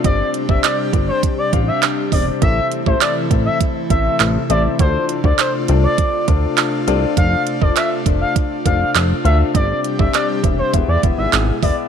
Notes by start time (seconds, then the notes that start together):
Already playing: C3
0.04 G1 G3 C4 D4 G4 C5 D5, kick, closed hi-hat
0.34 closed hi-hat
0.49 G1 C4 D4 G4 C5 D5 E5, kick
0.64 D5, clap, closed hi-hat
0.93 G1 C4 D4 G4 C5 D5, kick, closed hi-hat
1.08 C5
1.23 kick, closed hi-hat
1.38 D5
1.53 A1 C4 D4 G4 C5 F5, kick, closed hi-hat
1.68 E5
1.83 clap, closed hi-hat
2.12 E1 C4 D4 G4 C5 D5, kick, open hi-hat
2.42 A1 E3 A3 C4 E4 A4 C5 E5, kick, closed hi-hat
2.72 closed hi-hat
2.86 A1 C4 E4 A4 C5 E5, kick
3.01 D5, clap, closed hi-hat
3.31 A1 C4 E4 A4 C5 E5, kick, closed hi-hat
3.46 E5
3.61 kick, closed hi-hat
3.90 A1 C4 E4 A4 C5 E5, kick, closed hi-hat
4.20 A1, clap, closed hi-hat
4.50 A1 C4 E4 A4 C5 D5 E5, closed hi-hat
4.79 D2 A3 D4 F4 A4 C5 D5, kick, closed hi-hat
5.09 closed hi-hat
5.24 D2 D4 F4 A4 C5 D5, kick
5.39 C5, clap, closed hi-hat
5.68 C2 D4 F4 A4 C5 D5, closed hi-hat
5.83 D5
5.98 kick, closed hi-hat
6.28 D2 D4 F4 A4 C5 D5, kick, closed hi-hat
6.57 clap, closed hi-hat
6.87 C2 D4 F4 A4 C5 D5, closed hi-hat
7.17 F1 D4 F4 A4 C5 F5, kick, closed hi-hat
7.47 closed hi-hat
7.61 F1 D4 F4 A4 C5 D5, kick
7.76 E5, clap, closed hi-hat
8.06 F1 D4 F4 A4 C5 D5, kick, closed hi-hat
8.21 F5
8.36 kick, closed hi-hat
8.65 F1 D4 F4 A4 C5 D5 F5, kick, closed hi-hat
8.95 F1, clap, closed hi-hat
9.24 D2 D4 F4 A4 C5 E5 F5, closed hi-hat
9.54 G1 C3 G3 C4 D4 G4 C5 D5, kick, closed hi-hat
9.84 closed hi-hat
9.99 G1 C4 D4 G4 C5 D5 E5, kick
10.14 D5, clap, closed hi-hat
10.44 E1 C4 D4 G4 C5 E5, kick, closed hi-hat
10.59 C5
10.73 E1 B2 G#3 B3 E4 G#4 B4 E5, kick, closed hi-hat
10.88 E2 D5
11.03 E1 B3 E4 G#4 B4 E5, kick, closed hi-hat
11.18 G#1 E5
11.33 G#1, clap, closed hi-hat
11.62 E1 B3 E4 G#4 B4 D5 E5, kick, open hi-hat